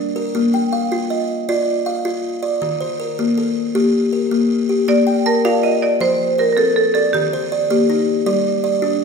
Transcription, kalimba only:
0.00 0.16 D4 medium
0.00 0.16 D5 medium
0.16 0.54 A#4 medium
0.35 0.73 A#3 medium
0.54 1.11 G5 medium
0.73 1.29 F5 medium
0.92 1.29 F4 medium
1.10 1.67 D#5 medium
1.49 1.86 F4 medium
1.49 2.05 D5 medium
1.86 2.43 F5 medium
2.05 2.43 F4 medium
2.43 2.80 D5 medium
2.62 2.99 D#3 medium
2.80 3.37 C5 medium
3.00 3.56 A#4 medium
3.19 3.56 A#3 medium
3.38 3.94 A4 medium
3.75 4.13 A#3 medium
3.75 4.32 G4 medium
4.13 4.69 A#4 medium
4.31 4.69 A#3 medium
4.69 5.07 G4 medium
4.88 5.26 A#3 medium
5.07 5.63 G5 medium
5.26 5.82 A5 medium
5.45 5.82 F4 medium
5.45 6.01 D5 medium
5.64 6.20 A#4 medium
6.00 6.38 F3 medium
6.00 6.37 C5 medium
6.38 6.95 C5 medium
6.57 6.95 C4 medium
6.95 7.32 D5 medium
7.14 7.51 D#3 medium
7.33 7.89 C5 medium
7.52 8.08 D5 medium
7.70 8.08 A#3 medium
7.70 8.26 G4 medium
7.89 8.45 D#4 medium
8.26 8.64 G3 medium
8.26 8.63 D5 medium
8.64 9.04 D5 medium
8.82 9.04 D4 medium

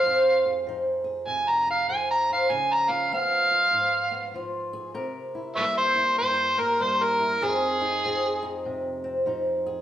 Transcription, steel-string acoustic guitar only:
0.00 0.66 F3 medium
0.00 0.45 G#4 medium
0.05 2.51 F2 medium
0.05 2.29 C5 medium
0.45 1.04 G#4 medium
0.67 1.87 F3 medium
0.67 1.66 D#4 medium
1.04 1.89 G#4 medium
1.26 1.89 C3 medium
1.67 2.48 D#4 medium
1.88 3.10 F3 medium
1.88 2.48 G#4 medium
2.30 2.49 C5 medium
2.50 3.12 C#3 medium
2.50 4.72 G#4 medium
2.89 3.49 F4 medium
3.11 4.33 F3 medium
3.11 4.10 B3 medium
3.50 4.34 F4 medium
3.71 4.92 G#2 medium
4.11 4.93 B3 medium
4.34 4.96 F3 medium
4.34 4.94 F4 medium
4.73 4.93 G#4 medium
4.94 6.18 C3 medium
4.94 7.39 A#4 medium
5.35 5.95 E4 medium
5.57 6.79 G3 medium
5.57 6.56 A#3 medium
5.96 6.80 E4 medium
6.21 7.40 G2 medium
6.57 7.42 A#3 medium
6.80 7.39 G3 medium
6.80 7.19 E4 medium
7.20 7.40 E4 medium
7.41 9.82 F2 medium
7.41 8.05 F3 medium
7.41 8.06 C4 medium
7.41 7.81 D#4 medium
7.81 8.42 D#4 medium
8.05 9.25 F3 medium
8.05 9.04 C4 medium
8.42 9.26 D#4 medium
8.65 9.27 C3 medium
9.04 9.82 C4 medium
9.26 9.82 F3 medium
9.26 9.82 D#4 medium
9.66 9.82 G#4 medium

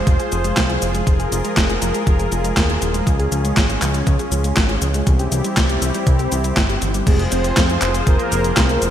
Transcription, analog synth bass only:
0.07 0.17 F1 loud
0.32 0.53 F1 medium
0.57 0.78 C2 loud
0.82 1.03 F1 medium
1.07 1.28 F1 medium
1.32 1.42 F1 medium
1.57 1.78 F1 loud
1.82 1.92 F1 medium
2.07 2.28 F1 medium
2.32 2.53 F1 loud
2.57 2.78 D#1 loud
2.82 3.03 D#1 medium
3.07 3.28 C#2 loud
3.32 3.53 C#2 loud
3.57 3.78 G#1 medium
3.82 4.03 C#2 loud
4.07 4.17 C#2 loud
4.32 4.53 C#2 loud
4.57 4.78 G#1 loud
4.82 5.03 C#2 medium
5.07 5.28 C2 loud
5.32 5.42 C2 medium
5.57 5.78 C2 loud
5.81 5.92 C2 medium
6.07 6.28 C2 loud
6.32 6.53 C2 loud
6.57 6.78 G1 medium
6.82 7.03 G1 medium
7.07 7.28 F1 loud
7.32 7.53 F1 loud
7.57 7.78 F2 medium
7.82 8.03 F1 loud
8.07 8.17 F1 loud
8.32 8.53 F1 medium
8.57 8.78 C2 loud
8.82 8.90 F1 medium

